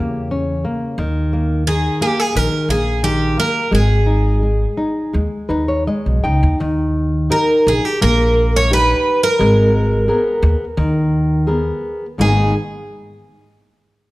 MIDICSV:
0, 0, Header, 1, 4, 480
1, 0, Start_track
1, 0, Key_signature, 5, "minor"
1, 0, Tempo, 683371
1, 693, Time_signature, 4, 2, 24, 8
1, 2616, Tempo, 715990
1, 5496, Tempo, 688073
1, 7416, Tempo, 702576
1, 9696, End_track
2, 0, Start_track
2, 0, Title_t, "Twelve-string acoustic guitar"
2, 0, Program_c, 0, 25
2, 0, Note_on_c, 0, 67, 71
2, 189, Note_off_c, 0, 67, 0
2, 1174, Note_on_c, 0, 68, 82
2, 1417, Note_off_c, 0, 68, 0
2, 1419, Note_on_c, 0, 67, 78
2, 1542, Note_off_c, 0, 67, 0
2, 1542, Note_on_c, 0, 68, 89
2, 1661, Note_off_c, 0, 68, 0
2, 1661, Note_on_c, 0, 70, 106
2, 1896, Note_off_c, 0, 70, 0
2, 1899, Note_on_c, 0, 68, 87
2, 2132, Note_off_c, 0, 68, 0
2, 2134, Note_on_c, 0, 67, 89
2, 2382, Note_off_c, 0, 67, 0
2, 2385, Note_on_c, 0, 70, 90
2, 2606, Note_off_c, 0, 70, 0
2, 2631, Note_on_c, 0, 68, 78
2, 4039, Note_off_c, 0, 68, 0
2, 5025, Note_on_c, 0, 70, 83
2, 5266, Note_off_c, 0, 70, 0
2, 5269, Note_on_c, 0, 68, 83
2, 5381, Note_off_c, 0, 68, 0
2, 5381, Note_on_c, 0, 67, 76
2, 5494, Note_off_c, 0, 67, 0
2, 5497, Note_on_c, 0, 70, 100
2, 5872, Note_off_c, 0, 70, 0
2, 5875, Note_on_c, 0, 73, 102
2, 5990, Note_off_c, 0, 73, 0
2, 5993, Note_on_c, 0, 71, 99
2, 6340, Note_off_c, 0, 71, 0
2, 6343, Note_on_c, 0, 70, 88
2, 8115, Note_off_c, 0, 70, 0
2, 8397, Note_on_c, 0, 68, 70
2, 8621, Note_off_c, 0, 68, 0
2, 9696, End_track
3, 0, Start_track
3, 0, Title_t, "Nylon-string guitar"
3, 0, Program_c, 1, 24
3, 0, Note_on_c, 1, 49, 61
3, 0, Note_on_c, 1, 58, 50
3, 210, Note_off_c, 1, 58, 0
3, 219, Note_on_c, 1, 61, 59
3, 449, Note_off_c, 1, 61, 0
3, 454, Note_on_c, 1, 58, 52
3, 663, Note_off_c, 1, 49, 0
3, 686, Note_off_c, 1, 58, 0
3, 694, Note_on_c, 1, 51, 66
3, 934, Note_on_c, 1, 58, 52
3, 1167, Note_off_c, 1, 51, 0
3, 1168, Note_off_c, 1, 58, 0
3, 1175, Note_on_c, 1, 51, 53
3, 1410, Note_off_c, 1, 51, 0
3, 1413, Note_on_c, 1, 58, 57
3, 1648, Note_off_c, 1, 58, 0
3, 1652, Note_on_c, 1, 51, 58
3, 1887, Note_off_c, 1, 51, 0
3, 1890, Note_on_c, 1, 58, 51
3, 2125, Note_off_c, 1, 58, 0
3, 2129, Note_on_c, 1, 51, 54
3, 2365, Note_off_c, 1, 51, 0
3, 2369, Note_on_c, 1, 58, 56
3, 2606, Note_off_c, 1, 58, 0
3, 2608, Note_on_c, 1, 56, 63
3, 2843, Note_on_c, 1, 63, 51
3, 3076, Note_off_c, 1, 63, 0
3, 3080, Note_off_c, 1, 56, 0
3, 3088, Note_on_c, 1, 56, 49
3, 3319, Note_off_c, 1, 56, 0
3, 3320, Note_on_c, 1, 63, 55
3, 3556, Note_off_c, 1, 63, 0
3, 3560, Note_on_c, 1, 56, 54
3, 3798, Note_on_c, 1, 71, 59
3, 3800, Note_off_c, 1, 56, 0
3, 3802, Note_on_c, 1, 63, 47
3, 3919, Note_off_c, 1, 71, 0
3, 3929, Note_on_c, 1, 73, 59
3, 4047, Note_off_c, 1, 63, 0
3, 4048, Note_off_c, 1, 73, 0
3, 4057, Note_on_c, 1, 56, 53
3, 4057, Note_on_c, 1, 75, 61
3, 4288, Note_off_c, 1, 75, 0
3, 4299, Note_off_c, 1, 56, 0
3, 4299, Note_on_c, 1, 63, 50
3, 4300, Note_on_c, 1, 79, 63
3, 4527, Note_off_c, 1, 79, 0
3, 4537, Note_off_c, 1, 63, 0
3, 4545, Note_on_c, 1, 51, 65
3, 5007, Note_off_c, 1, 51, 0
3, 5013, Note_on_c, 1, 63, 46
3, 5017, Note_on_c, 1, 67, 41
3, 5019, Note_on_c, 1, 70, 51
3, 5397, Note_off_c, 1, 63, 0
3, 5398, Note_off_c, 1, 67, 0
3, 5400, Note_off_c, 1, 70, 0
3, 5492, Note_on_c, 1, 58, 78
3, 5967, Note_off_c, 1, 58, 0
3, 5974, Note_on_c, 1, 63, 55
3, 5978, Note_on_c, 1, 67, 47
3, 6360, Note_off_c, 1, 63, 0
3, 6361, Note_off_c, 1, 67, 0
3, 6454, Note_on_c, 1, 56, 75
3, 6917, Note_off_c, 1, 56, 0
3, 6933, Note_on_c, 1, 68, 48
3, 6938, Note_on_c, 1, 59, 56
3, 6940, Note_on_c, 1, 70, 46
3, 7319, Note_off_c, 1, 68, 0
3, 7322, Note_off_c, 1, 59, 0
3, 7322, Note_off_c, 1, 70, 0
3, 7416, Note_on_c, 1, 51, 74
3, 7883, Note_off_c, 1, 51, 0
3, 7893, Note_on_c, 1, 68, 47
3, 7897, Note_on_c, 1, 70, 42
3, 7901, Note_on_c, 1, 59, 49
3, 8288, Note_off_c, 1, 68, 0
3, 8290, Note_off_c, 1, 70, 0
3, 8293, Note_off_c, 1, 59, 0
3, 8379, Note_on_c, 1, 44, 53
3, 8382, Note_on_c, 1, 51, 46
3, 8388, Note_on_c, 1, 56, 49
3, 8392, Note_on_c, 1, 58, 48
3, 8393, Note_on_c, 1, 63, 60
3, 8394, Note_on_c, 1, 59, 46
3, 8611, Note_off_c, 1, 44, 0
3, 8612, Note_off_c, 1, 51, 0
3, 8616, Note_off_c, 1, 56, 0
3, 8617, Note_off_c, 1, 58, 0
3, 8619, Note_off_c, 1, 59, 0
3, 8619, Note_off_c, 1, 63, 0
3, 9696, End_track
4, 0, Start_track
4, 0, Title_t, "Upright bass"
4, 0, Program_c, 2, 32
4, 0, Note_on_c, 2, 40, 85
4, 443, Note_off_c, 2, 40, 0
4, 687, Note_on_c, 2, 39, 92
4, 1316, Note_off_c, 2, 39, 0
4, 1654, Note_on_c, 2, 34, 83
4, 1733, Note_off_c, 2, 34, 0
4, 1887, Note_on_c, 2, 34, 77
4, 2359, Note_off_c, 2, 34, 0
4, 2615, Note_on_c, 2, 32, 90
4, 3232, Note_off_c, 2, 32, 0
4, 3566, Note_on_c, 2, 39, 85
4, 3645, Note_off_c, 2, 39, 0
4, 3805, Note_on_c, 2, 39, 73
4, 4050, Note_off_c, 2, 39, 0
4, 4183, Note_on_c, 2, 35, 75
4, 4294, Note_off_c, 2, 35, 0
4, 4305, Note_on_c, 2, 37, 76
4, 4415, Note_off_c, 2, 37, 0
4, 4428, Note_on_c, 2, 39, 84
4, 4536, Note_off_c, 2, 39, 0
4, 4547, Note_on_c, 2, 39, 80
4, 5010, Note_off_c, 2, 39, 0
4, 5259, Note_on_c, 2, 34, 92
4, 5336, Note_off_c, 2, 34, 0
4, 5502, Note_on_c, 2, 34, 105
4, 6127, Note_off_c, 2, 34, 0
4, 6462, Note_on_c, 2, 32, 98
4, 6925, Note_off_c, 2, 32, 0
4, 7173, Note_on_c, 2, 39, 94
4, 7252, Note_off_c, 2, 39, 0
4, 7416, Note_on_c, 2, 39, 91
4, 8049, Note_off_c, 2, 39, 0
4, 8384, Note_on_c, 2, 32, 78
4, 8614, Note_off_c, 2, 32, 0
4, 9696, End_track
0, 0, End_of_file